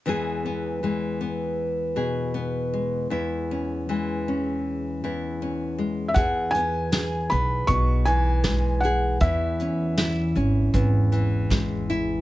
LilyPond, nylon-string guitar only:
\new Staff \with { instrumentName = "Nylon-string guitar" } { \time 4/4 \key e \major \tempo 4 = 79 << { <e gis b gis'>8 b8 gis8 b4 gis'8 b8 gis8 | e'8 cis'8 gis8 cis'4 e'8 cis'8 gis8 | gis'8 b8 gis'8 b4. gis8 gis'8 | e'8 cis'8 e'8 cis'4. gis8 e'8 | } \\ { e,4 e4. b,4. | e,4 e4. e,4. | e,2 b,8 e4. | e,2 e,8 e4. | } >> }